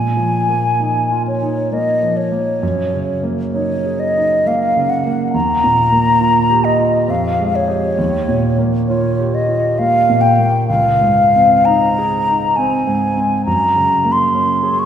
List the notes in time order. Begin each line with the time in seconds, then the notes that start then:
Already playing: A#2 G#5
0.17 F3
0.49 A#3
0.80 D#4
1.11 F4
1.27 C#5
1.43 D#4
1.72 A#3 D#5
2.03 F3
2.17 C#5
2.32 A#3
2.63 F#2
2.94 C#3
3.23 A#3
3.53 D#4 C#5
3.86 G#4
4.00 D#5
4.17 D#4
4.46 A#3 F5
4.77 C#3
4.90 F#5
5.06 A#3
5.33 D#2 A#5
5.64 A#2
5.92 A#3
6.21 F4
6.50 G4
6.64 D#5
6.79 F4
7.08 F2 F5
7.39 G#3
7.56 C#5
7.68 G4 D#5
7.98 D#2
8.29 A#2
8.58 A#3
8.88 F4 C#5
9.20 G4
9.35 D#5
9.49 F4
9.79 A#3 F5
10.10 A#2
10.21 G5
10.39 A#3
10.68 C#2 F5
11.01 G#2
11.35 C4
11.65 D#4 A#5
11.99 G#4
12.29 D#4
12.56 C4 G#5
12.87 G#2
13.17 C4
13.46 F#2 A#5
13.76 C#3
14.05 A#3
14.12 C6
14.34 C#4
14.63 G#4
14.79 C#6